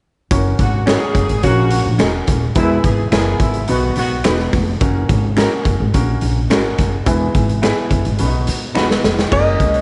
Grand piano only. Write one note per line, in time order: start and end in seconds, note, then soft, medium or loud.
0.31 0.75 C#4 medium
0.31 0.75 F#4 medium
0.31 0.75 A#4 medium
0.31 0.76 C#5 medium
0.86 1.30 C#4 medium
0.86 1.31 F#4 medium
0.86 1.31 A#4 medium
0.86 1.31 C#5 medium
1.43 1.87 C#4 medium
1.43 1.87 F#4 medium
1.43 1.87 A#4 medium
1.43 1.87 C#5 medium
1.99 2.43 C#4 medium
1.99 2.43 F#4 medium
1.99 2.06 G#4 medium
1.99 2.44 D#5 loud
2.06 2.47 A#4 medium
2.55 3.37 E3 medium
2.55 3.00 B3 medium
2.55 3.00 E4 medium
2.55 3.00 G#4 medium
2.55 2.63 A#4 medium
2.63 3.03 B4 medium
3.11 3.56 B3 medium
3.11 3.56 E4 medium
3.11 3.56 G#4 medium
3.11 3.56 A#4 medium
3.68 4.49 B2 medium
3.68 4.12 B3 medium
3.68 4.12 D#4 medium
3.68 4.13 F#4 medium
3.68 4.13 B4 medium
4.24 4.68 B3 medium
4.24 4.68 D#4 medium
4.24 4.69 F#4 medium
4.24 4.69 B4 medium
4.80 5.25 A#3 medium
4.80 5.25 C#4 medium
4.80 5.25 F#4 medium
4.80 5.25 A#4 medium
5.37 5.81 A#3 medium
5.37 5.81 C#4 medium
5.37 5.81 F#4 medium
5.37 5.82 A#4 loud
5.94 6.38 A#3 medium
5.94 6.38 C#4 medium
5.94 6.38 F#4 medium
5.94 6.38 A#4 medium
6.50 6.94 A#3 medium
6.50 6.94 C#4 medium
6.50 6.94 F#4 medium
6.50 6.95 A#4 medium
7.06 7.87 E3 medium
7.06 7.50 B3 medium
7.06 7.50 E4 medium
7.06 7.50 G#4 medium
7.06 7.50 B4 medium
7.62 8.06 B3 medium
7.62 8.06 E4 medium
7.62 8.07 G#4 medium
7.62 8.07 B4 medium
8.19 9.00 B2 medium
8.19 8.63 B3 medium
8.19 8.26 C#4 medium
8.19 8.63 F#4 medium
8.19 8.63 B4 medium
8.26 8.66 D#4 medium
8.74 9.19 B3 medium
8.74 9.19 D#4 medium
8.74 9.19 F#4 medium
8.74 9.19 B4 medium
9.31 9.75 A#3 medium
9.31 9.76 C#4 medium
9.31 9.76 F#4 medium
9.31 9.39 G#4 medium
9.39 9.79 A#4 medium